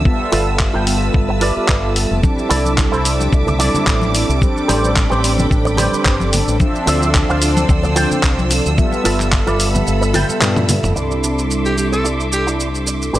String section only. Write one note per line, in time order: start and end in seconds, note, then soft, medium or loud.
0.00 2.20 E6 medium
0.05 2.21 B4 medium
0.05 4.38 A5 medium
2.23 4.39 E5 medium
2.23 6.56 D6 medium
4.42 6.58 G5 medium
4.42 6.58 B5 medium
6.60 8.76 D5 medium
6.60 8.76 C6 medium
6.60 10.92 E6 medium
8.78 10.94 A4 medium
8.78 10.94 B5 medium
10.96 13.13 A4 medium
10.96 13.12 E5 medium
10.96 13.12 C6 medium
10.96 13.12 D6 medium
13.15 13.19 G5 medium
13.15 13.19 B5 medium
13.15 13.19 D6 medium